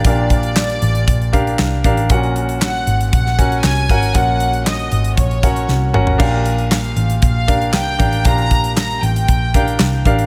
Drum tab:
CC |----------------|----------------|----------------|x---------------|
HH |x-xx-xxxxxxx--xx|xxxx--xxx-xx-xxx|x-xx-xxxxxxx----|--xx-xxxx-xx--xx|
CP |----x-------x---|----x-------x---|----x-----------|----x-------x---|
SD |----o-------o---|----o----o--o---|----o-------o---|----o-------o---|
T2 |----------------|----------------|--------------o-|----------------|
FT |----------------|----------------|---------------o|----------------|
BD |o-o-----o-o---o-|o-------o-o---o-|o-------o-o-----|o-------o-o---o-|

CC |----------------|
HH |xxxx-xxxx-xx--xx|
CP |----x-------x---|
SD |----o-------o---|
T2 |----------------|
FT |----------------|
BD |o-o-----o-o---o-|